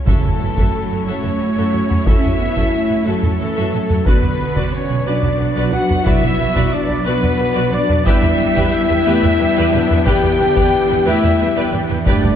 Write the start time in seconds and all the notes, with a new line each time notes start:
0.06 F#2 C#3 A3 C#4 E4 F#4 A4 C#5 E5, taiko, impact
0.23 F#2 F#4 A4 E5, taiko low-mid
0.39 F#2 E3 F#4 A4 C#5
0.56 F#2 F#4 A4 E5, taiko
0.74 F#3
0.90 F#2 F#4 A4 C#5
1.05 F#2 A3 C#4 F#4 A4 C#5 E5
1.23 F#2 F#4 A4 E5, taiko low-mid
1.39 F#2 F#4 A4 C#5
1.56 F#2 F#4 A4 E5
1.71 F#2 F#4 A4 E5
1.89 F#2 F#4 A4 C#5, taiko low-mid
2.05 F#2 C#4 E4 F#4 A4 E5, taiko
2.21 F#2 F#4 A4 E5, taiko low-mid
2.39 F#2 B3 F#4 A4 C#5
2.54 F#2 F#4 A4 E5, taiko
2.73 A3
2.89 F#2 F#4 A4 C#5
3.05 F#2 F#3 A3 F#4 A4 E5
3.22 F#2 F#4 A4 E5, taiko low-mid
3.38 F#2 E3 F#4 A4 C#5
3.55 F#2 F#4 A4 E5
3.73 F#2 F#3 F#4 A4 E5
3.89 F#2 F#4 A4 C#5, taiko low-mid
4.05 B1 D3 B3 F#4 B4 D5, taiko
4.22 B1 F#4 B4 D5, taiko low-mid
4.39 B1 F#4 B4
4.55 B1 F#4 B4 D5, taiko
4.73 C#4 C#5
4.89 B1 F#4 B4
5.05 B1 F#3 D4 F#4 B4 D5
5.23 B1 F#4 B4 D5, taiko low-mid
5.39 B1 F#4 B4
5.56 B1 F#4 B4 D5
5.72 B1 F#4 B4 D5 F#5
5.89 B1 F#4 B4, taiko low-mid
6.04 B1 E4 F#4 B4 D5 E5, taiko
6.21 B1 F#4 B4 D5, taiko low-mid
6.39 B1 F#4 B4
6.55 B1 F#4 B4 D5, taiko
6.72 D4 D5
6.88 B1 F#4 B4
7.05 B1 B3 F#4 B4 D5
7.22 B1 F#4 B4 D5, taiko low-mid
7.39 B1 F#4 B4
7.54 B1 F#4 B4 D5
7.71 B1 D4 F#4 B4 D5
7.88 B1 F#4 B4, taiko low-mid
8.05 E2 G3 B3 D4 E4 G4 B4 D5 E5 G5, taiko
8.22 E2 G4 B4 D5 G5, taiko low-mid
8.39 E2 G4 B4 E5
8.54 E2 G4 B4 D5 G5, taiko
8.88 E2 G4 B4 E5
9.04 E2 A3 G4 B4 D5 G5
9.21 E2 G4 B4 D5 G5, taiko low-mid
9.38 E2 G3 G4 B4 E5
9.54 E2 G4 B4 D5 G5
9.72 E2 F#3 G4 B4 D5 G5
9.89 E2 G4 B4 E5, taiko low-mid
10.05 E2 E3 G4 B4 D5 G5, taiko
10.23 E2 G4 B4 D5 G5, taiko low-mid
10.40 E2 D3 G4 B4 E5
10.55 E2 G4 B4 D5 G5, taiko
10.73 E3
10.89 E2 G4 B4 E5
11.05 E2 A3 E4 G4 B4 D5 E5 G5
11.22 E2 G4 B4 D5 G5, taiko low-mid
11.39 E2 G3 G4 B4 E5
11.55 E2 G4 B4 D5 G5
11.71 E2 E3 G4 B4 D5 G5
11.88 E2 G4 B4 E5, taiko low-mid
12.06 G2 A3 B3 D4 G4 B4 D5 G5, taiko
12.22 G2 G4 B4 D5 G5, taiko low-mid